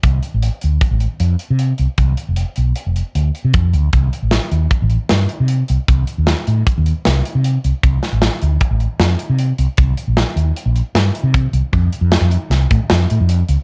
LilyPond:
<<
  \new Staff \with { instrumentName = "Fretless electric bass" } { \clef bass \time 5/4 \key c \dorian \tempo 4 = 154 c,8 r16 a,,8 r16 d,8 r16 a,,8 r16 f,8 r16 c8. c,16 r16 | c,8 r16 f,,8 r16 b,,8 r16 f,,8 r16 d,8 r16 c16 f,8 d,8 | c,8 r16 a,,8 r16 ees,8 r16 a,,8 r16 g,8 r16 c8. c,16 r16 | c,8 r16 ees,8 r16 a,8 r16 ees,8 r16 c,8 r16 c8. c,16 r16 |
c,8 r16 a,,8 r16 d,8 r16 a,,8 r16 f,8 r16 c8. c,16 r16 | c,8 r16 bes,,8 r16 ees,8 r16 bes,,8 r16 g,8 r16 c8. c,16 r16 | f,8 r16 f,8 f,8 r16 c,8 a,16 r16 f,8 a,16 f,8. des,16 r16 | }
  \new DrumStaff \with { instrumentName = "Drums" } \drummode { \time 5/4 <hh bd>8 hh8 hh8 hh8 <hh bd>8 hh8 hh8 hh8 hh8 hh8 | <hh bd>8 hh8 hh8 hh8 hh8 hh8 hh8 hh8 <hh bd>8 hh8 | <hh bd>8 hh8 <hh sn>8 hh8 <hh bd>8 hh8 <hh sn>8 hh8 hh8 hh8 | <hh bd>8 hh8 <hh sn>8 hh8 <hh bd>8 hh8 <hh sn>8 hh8 hh8 hh8 |
<hh bd>8 <hh sn>8 <hh sn>8 hh8 <hh bd>8 hh8 <hh sn>8 hh8 hh8 hh8 | <hh bd>8 hh8 <hh sn>8 hh8 hh8 hh8 <hh sn>8 hh8 <hh bd>8 hh8 | <hh bd>8 hh8 <hh sn>8 hh8 <hh sn>8 <hh bd>8 <hh sn>8 hh8 hh8 hh8 | }
>>